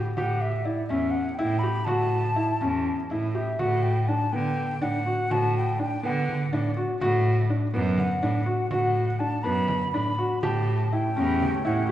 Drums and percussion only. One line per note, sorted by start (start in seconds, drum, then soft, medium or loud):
0.17 frame drum medium
0.66 frame drum soft
0.89 frame drum soft
1.39 frame drum soft
1.86 frame drum medium
2.11 frame drum soft
2.61 frame drum soft
2.86 frame drum soft
3.10 frame drum soft
3.59 frame drum medium
5.07 frame drum soft
5.31 frame drum medium
6.05 frame drum soft
6.29 frame drum soft
6.77 frame drum soft
7.01 frame drum medium
7.98 frame drum medium
8.46 frame drum soft
8.71 frame drum medium
9.68 frame drum medium
10.19 frame drum soft
10.43 frame drum medium
11.42 frame drum medium